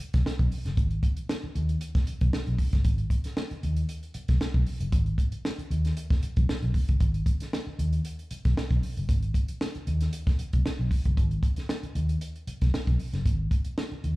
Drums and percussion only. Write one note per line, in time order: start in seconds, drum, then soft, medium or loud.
0.00 closed hi-hat medium
0.13 kick loud
0.13 snare soft
0.13 closed hi-hat medium
0.26 snare medium
0.39 kick loud
0.39 closed hi-hat soft
0.52 open hi-hat medium
0.66 snare soft
0.66 closed hi-hat medium
0.77 kick loud
0.77 closed hi-hat medium
0.91 closed hi-hat soft
1.03 kick medium
1.03 closed hi-hat medium
1.17 closed hi-hat medium
1.29 snare loud
1.56 closed hi-hat medium
1.69 closed hi-hat soft
1.81 closed hi-hat loud
1.95 kick loud
1.95 snare soft
1.95 closed hi-hat soft
2.07 closed hi-hat medium
2.21 kick medium
2.21 closed hi-hat soft
2.33 snare loud
2.47 closed hi-hat soft
2.58 kick medium
2.58 open hi-hat medium
2.73 kick medium
2.73 snare soft
2.73 closed hi-hat medium
2.85 kick loud
2.85 closed hi-hat medium
2.98 closed hi-hat soft
3.10 kick medium
3.10 closed hi-hat medium
3.24 snare soft
3.24 closed hi-hat medium
3.37 snare loud
3.51 closed hi-hat soft
3.63 closed hi-hat medium
3.76 closed hi-hat soft
3.89 closed hi-hat medium
4.03 closed hi-hat soft
4.14 closed hi-hat medium
4.28 kick medium
4.28 snare soft
4.28 closed hi-hat soft
4.41 snare loud
4.54 kick medium
4.66 open hi-hat medium
4.80 closed hi-hat medium
4.92 kick loud
4.92 closed hi-hat medium
5.06 closed hi-hat soft
5.18 kick medium
5.18 closed hi-hat medium
5.32 closed hi-hat medium
5.45 snare medium
5.59 closed hi-hat soft
5.71 closed hi-hat medium
5.85 snare soft
5.85 closed hi-hat medium
5.97 closed hi-hat medium
6.10 kick loud
6.10 snare soft
6.10 closed hi-hat soft
6.23 closed hi-hat medium
6.36 kick loud
6.36 closed hi-hat soft
6.49 snare loud
6.62 closed hi-hat soft
6.74 kick medium
6.74 open hi-hat medium
6.88 kick medium
6.88 closed hi-hat medium
7.00 kick medium
7.00 closed hi-hat medium
7.14 closed hi-hat soft
7.26 kick medium
7.26 closed hi-hat medium
7.40 snare soft
7.40 closed hi-hat medium
7.53 snare loud
7.79 closed hi-hat medium
7.93 closed hi-hat medium
8.05 closed hi-hat medium
8.19 closed hi-hat soft
8.31 closed hi-hat medium
8.45 kick medium
8.45 snare soft
8.45 closed hi-hat soft
8.57 snare loud
8.71 kick medium
8.71 closed hi-hat soft
8.83 open hi-hat medium
8.97 closed hi-hat medium
9.09 kick loud
9.09 closed hi-hat medium
9.22 closed hi-hat soft
9.34 kick medium
9.34 closed hi-hat medium
9.48 closed hi-hat medium
9.61 snare loud
9.75 closed hi-hat soft
9.87 closed hi-hat medium
10.01 snare soft
10.01 closed hi-hat medium
10.13 closed hi-hat loud
10.27 kick loud
10.27 snare soft
10.27 closed hi-hat soft
10.39 closed hi-hat medium
10.53 kick medium
10.53 closed hi-hat medium
10.66 snare loud
10.91 kick medium
10.91 open hi-hat medium
11.05 kick medium
11.05 closed hi-hat medium
11.17 kick loud
11.17 closed hi-hat medium
11.31 closed hi-hat soft
11.43 kick medium
11.43 closed hi-hat medium
11.56 snare soft
11.56 closed hi-hat medium
11.69 snare loud
11.83 closed hi-hat soft
11.95 closed hi-hat medium
12.09 closed hi-hat medium
12.21 closed hi-hat medium
12.36 closed hi-hat soft
12.47 closed hi-hat medium
12.61 kick medium
12.61 snare soft
12.61 closed hi-hat soft
12.74 snare loud
12.87 kick medium
12.87 closed hi-hat soft
12.99 open hi-hat medium
13.13 snare soft
13.13 closed hi-hat medium
13.26 kick medium
13.26 closed hi-hat medium
13.51 kick medium
13.51 closed hi-hat medium
13.65 closed hi-hat soft
13.78 snare loud
14.04 closed hi-hat medium